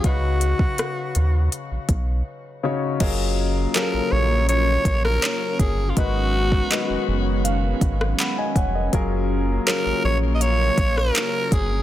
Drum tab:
CC |----------------|x---------------|----------------|----------------|
HH |x-x-x-x-x-x-----|x---x---x-x-x-x-|x---x---x-x-x-x-|x---x---x-x-x-x-|
CP |----------------|----x-------x---|----x-------x---|----x-------x---|
SD |----r-----------|-----------r----|-----------r----|-----------r----|
BD |o--o------o-----|o---------o---o-|o--o------o---o-|o---------o---o-|